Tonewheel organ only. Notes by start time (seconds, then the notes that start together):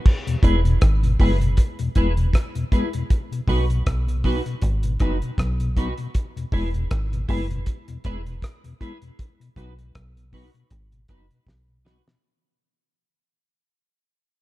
0.27 E2 B2
0.43 G#3 B3 E4
0.65 E2 B2
1.03 E2 B2
1.19 G#3 B3 E4
1.41 E2 B2
1.79 E2 B2
1.96 G#3 B3 E4
2.17 E2 B2
2.55 E2 B2
2.72 G#3 B3 E4
2.94 E2 B2
3.31 B2
3.48 F#3 B3 D#4
3.69 B2
4.08 B2
4.24 F#3 B3 D#4
4.46 B2
4.84 B2
5.00 F#3 B3 D#4
5.22 B2
5.60 B2
5.77 F#3 B3 D#4
5.98 B2
6.36 E2 B2
6.53 G#3 B3 E4
6.74 E2 B2
7.12 E2 B2
7.29 G#3 B3 E4
7.50 E2 B2
7.88 E2 B2
8.04 G#3 B3 E4
8.26 E2 B2
8.64 E2 B2
8.80 G#3 B3 E4
9.02 E2 B2
9.40 B2
9.57 F#3 B3 D#4
9.78 B2
10.16 B2
10.32 F#3 B3 D#4
10.54 B2
10.92 B2
11.09 F#3 B3 D#4
11.31 B2
11.69 B2
11.85 F#3 B3 D#4
12.07 B2